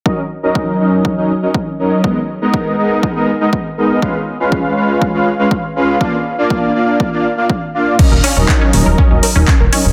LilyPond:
<<
  \new Staff \with { instrumentName = "Supersaw synth" } { \time 4/4 \key ees \minor \tempo 4 = 121 <ges des' ees' bes' ees''>16 r8 <ges des' ees' bes' ees''>8. <ges des' ees' bes' ees''>8. <ges des' ees' bes' ees''>16 r16 <ges des' ees' bes' ees''>16 r8 <ges des' ees' bes' ees''>8 | <aes ces' ees' bes' ees''>16 r8 <aes ces' ees' bes' ees''>8. <aes ces' ees' bes' ees''>8. <aes ces' ees' bes' ees''>16 r16 <aes ces' ees' bes' ees''>16 r8 <aes ces' ees' bes' ees''>8 | <aes des' f' ces'' f''>16 r8 <aes des' f' ces'' f''>8. <aes des' f' ces'' f''>8. <aes des' f' ces'' f''>16 r16 <aes des' f' ces'' f''>16 r8 <aes des' f' ces'' f''>8 | <bes d' f' d'' f''>16 r8 <bes d' f' d'' f''>8. <bes d' f' d'' f''>8. <bes d' f' d'' f''>16 r16 <bes d' f' d'' f''>16 r8 <bes d' f' d'' f''>8 |
<ges des' ees' bes' ees''>16 r8 <ges des' ees' bes' ees''>8. <ges des' ees' bes' ees''>8. <ges des' ees' bes' ees''>16 r16 <ges des' ees' bes' ees''>16 r8 <ges des' ees' bes' ees''>8 | }
  \new Staff \with { instrumentName = "Synth pluck" } { \time 4/4 \key ees \minor r1 | r1 | r1 | r1 |
des'16 bes'16 des'16 des'16 bes'16 des'16 des'16 bes'16 des'16 des'16 bes'16 des'16 des'16 bes'16 des'16 des'16 | }
  \new Staff \with { instrumentName = "Analog synth bass" } { \clef bass \time 4/4 \key ees \minor r1 | r1 | r1 | r1 |
r16 ees,,16 r16 ees,,16 r8 ees,,16 ees,,16 r16 ees,,16 r16 ees,,16 r16 ees,,16 r16 ees,,16 | }
  \new DrumStaff \with { instrumentName = "Drums" } \drummode { \time 4/4 bd4 bd4 bd4 bd4 | bd4 bd4 bd4 bd4 | bd4 bd4 bd4 bd4 | bd4 bd4 bd4 bd4 |
<cymc bd>8 hho8 <hc bd>8 hho8 bd8 hho8 <hc bd>8 hho8 | }
>>